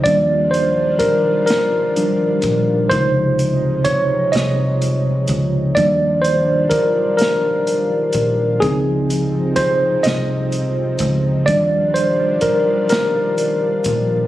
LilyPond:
<<
  \new Staff \with { instrumentName = "Tine electric piano" } { \time 6/8 \key ees \major \tempo 4. = 42 d''8 c''8 bes'8 bes'4. | c''4 des''8 ees''4 r8 | d''8 c''8 bes'8 bes'4. | aes'4 c''8 ees''4 r8 |
d''8 c''8 bes'8 bes'4. | }
  \new Staff \with { instrumentName = "Tine electric piano" } { \clef bass \time 6/8 \key ees \major <f g d'>4. r8 <f g d'>8 r8 | <c f ees'>2. | <f g d'>8 r2 r8 | <f c' ees'>8 r2 r8 |
<f g d'>4. r4. | }
  \new Staff \with { instrumentName = "Analog synth pad" } { \clef bass \time 6/8 \key ees \major <ees g d' f'>2. | <c f aes ees'>2. | <ees g d' f'>2. | <c f c' ees'>2. |
<ees g d' f'>2. | }
  \new Staff \with { instrumentName = "Fingered electric bass" } { \clef bass \time 6/8 \key ees \major ees,4 r4. bes,,8 | des,4. c,4 des,8 | ees,4 r4. bes,,8 | des,4. c,4 des,8 |
ees,4 r4. bes,,8 | }
  \new DrumStaff \with { instrumentName = "Drums" } \drummode { \time 6/8 <hh bd>8 hh8 <hh bd>8 <hh sn>8 hh8 <hh bd>8 | <hh bd>8 hh8 <hh bd>8 <hh sn>8 hh8 <hh bd>8 | <hh bd>8 hh8 <hh bd>8 <hh sn>8 hh8 <hh bd>8 | <hh bd>8 hh8 <hh bd>8 <hh sn>8 hh8 <hh bd>8 |
<hh bd>8 hh8 <hh bd>8 <hh sn>8 hh8 <hh bd>8 | }
>>